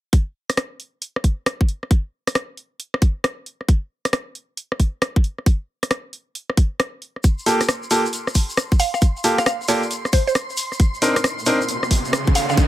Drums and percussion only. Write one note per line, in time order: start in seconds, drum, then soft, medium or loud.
0.13 kick loud
0.13 closed hi-hat medium
0.50 cross-stick medium
0.50 closed hi-hat medium
0.57 cross-stick loud
0.57 closed hi-hat medium
0.80 closed hi-hat soft
1.02 closed hi-hat medium
1.16 cross-stick medium
1.24 kick medium
1.24 closed hi-hat medium
1.46 cross-stick loud
1.46 closed hi-hat medium
1.61 kick loud
1.69 closed hi-hat soft
1.83 cross-stick soft
1.91 kick loud
1.91 closed hi-hat medium
2.27 cross-stick medium
2.27 closed hi-hat medium
2.35 cross-stick loud
2.35 closed hi-hat medium
2.57 closed hi-hat soft
2.80 closed hi-hat medium
2.94 cross-stick medium
3.02 kick loud
3.02 closed hi-hat medium
3.24 cross-stick loud
3.24 closed hi-hat medium
3.46 closed hi-hat soft
3.61 cross-stick soft
3.69 kick loud
3.69 closed hi-hat medium
4.05 cross-stick medium
4.05 closed hi-hat medium
4.13 cross-stick loud
4.13 closed hi-hat medium
4.35 closed hi-hat soft
4.57 closed hi-hat medium
4.72 cross-stick medium
4.80 kick medium
4.80 closed hi-hat medium
5.02 cross-stick loud
5.02 closed hi-hat medium
5.16 kick loud
5.24 closed hi-hat soft
5.38 cross-stick soft
5.46 kick loud
5.46 closed hi-hat medium
5.83 cross-stick medium
5.83 closed hi-hat medium
5.91 cross-stick loud
5.91 closed hi-hat medium
6.13 closed hi-hat soft
6.35 closed hi-hat medium
6.50 cross-stick medium
6.57 kick loud
6.57 closed hi-hat medium
6.80 cross-stick loud
6.80 closed hi-hat medium
7.02 closed hi-hat soft
7.16 cross-stick soft
7.24 kick loud
7.24 closed hi-hat medium
7.24 shaker soft
7.39 shaker soft
7.46 open hi-hat medium
7.46 shaker medium
7.61 cross-stick medium
7.61 closed hi-hat medium
7.61 shaker soft
7.69 cross-stick loud
7.69 closed hi-hat medium
7.69 shaker medium
7.83 shaker soft
7.91 open hi-hat loud
7.91 shaker medium
8.06 shaker soft
8.13 closed hi-hat medium
8.13 shaker soft
8.27 cross-stick medium
8.27 shaker soft
8.35 kick medium
8.35 open hi-hat medium
8.35 shaker medium
8.49 shaker soft
8.57 cross-stick loud
8.57 closed hi-hat medium
8.57 shaker medium
8.72 kick loud
8.72 shaker soft
8.80 open hi-hat medium
8.80 shaker medium
8.94 cross-stick soft
8.94 shaker soft
9.02 kick loud
9.02 closed hi-hat medium
9.02 shaker soft
9.17 shaker soft
9.24 open hi-hat loud
9.24 shaker medium
9.38 cross-stick medium
9.38 closed hi-hat medium
9.38 shaker soft
9.46 cross-stick loud
9.46 closed hi-hat medium
9.46 shaker soft
9.61 shaker soft
9.68 open hi-hat loud
9.68 shaker medium
9.83 shaker soft
9.91 closed hi-hat medium
9.91 shaker medium
10.05 cross-stick medium
10.05 shaker soft
10.13 kick loud
10.13 open hi-hat medium
10.13 shaker medium
10.28 shaker soft
10.35 cross-stick loud
10.35 closed hi-hat medium
10.35 shaker soft
10.50 shaker soft
10.57 open hi-hat medium
10.57 shaker medium
10.72 cross-stick soft
10.72 shaker soft
10.80 kick loud
10.80 closed hi-hat medium
10.80 shaker soft
10.94 shaker soft
11.02 open hi-hat loud
11.02 shaker medium
11.16 cross-stick medium
11.16 closed hi-hat medium
11.16 shaker soft
11.24 cross-stick loud
11.24 closed hi-hat medium
11.24 shaker medium
11.39 shaker soft
11.46 open hi-hat loud
11.46 shaker medium
11.61 shaker soft
11.68 closed hi-hat medium
11.68 shaker soft
11.83 cross-stick medium
11.83 shaker soft
11.91 kick medium
11.91 open hi-hat loud
11.91 shaker medium
12.05 shaker soft
12.13 cross-stick loud
12.13 closed hi-hat medium
12.13 shaker soft
12.27 kick loud
12.27 shaker soft
12.35 open hi-hat loud
12.35 shaker medium
12.49 cross-stick soft
12.49 shaker soft
12.57 kick loud
12.57 closed hi-hat medium
12.57 shaker medium